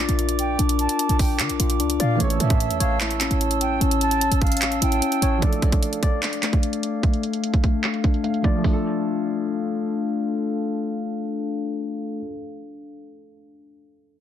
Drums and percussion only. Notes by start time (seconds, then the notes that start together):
0.09 closed hi-hat
0.19 closed hi-hat
0.29 closed hi-hat
0.39 closed hi-hat
0.59 closed hi-hat
0.69 closed hi-hat
0.79 closed hi-hat
0.89 closed hi-hat
0.99 closed hi-hat
1.09 closed hi-hat
1.19 kick, open hi-hat
1.39 clap, closed hi-hat
1.50 closed hi-hat
1.60 closed hi-hat
1.70 closed hi-hat
1.80 closed hi-hat
1.90 closed hi-hat
2.00 closed hi-hat
2.20 closed hi-hat
2.30 closed hi-hat
2.40 closed hi-hat
2.50 kick, closed hi-hat
2.60 closed hi-hat
2.71 closed hi-hat
2.80 closed hi-hat
3.00 clap, closed hi-hat
3.11 closed hi-hat
3.21 clap, closed hi-hat
3.31 closed hi-hat
3.41 closed hi-hat
3.51 closed hi-hat
3.61 closed hi-hat
3.81 closed hi-hat
3.91 closed hi-hat
4.01 closed hi-hat
4.11 closed hi-hat
4.21 closed hi-hat
4.32 closed hi-hat
4.42 kick, closed hi-hat, open hi-hat
4.47 closed hi-hat
4.52 closed hi-hat
4.57 closed hi-hat
4.62 clap, closed hi-hat
4.72 closed hi-hat
4.82 closed hi-hat
4.92 closed hi-hat
5.02 closed hi-hat
5.12 closed hi-hat
5.22 closed hi-hat
5.42 kick, closed hi-hat
5.53 closed hi-hat
5.62 kick, closed hi-hat
5.72 kick, closed hi-hat
5.83 closed hi-hat
5.93 closed hi-hat
6.03 kick, closed hi-hat
6.23 clap, closed hi-hat
6.33 closed hi-hat
6.43 clap, closed hi-hat
6.53 kick, closed hi-hat
6.63 closed hi-hat
6.73 closed hi-hat
6.83 closed hi-hat
7.03 kick, closed hi-hat
7.14 closed hi-hat
7.23 closed hi-hat
7.33 closed hi-hat
7.44 closed hi-hat
7.54 kick, closed hi-hat
7.64 kick, closed hi-hat
7.84 clap, closed hi-hat
7.94 closed hi-hat
8.04 kick, closed hi-hat
8.14 closed hi-hat
8.24 closed hi-hat
8.34 closed hi-hat
8.44 kick, closed hi-hat
8.64 kick, open hi-hat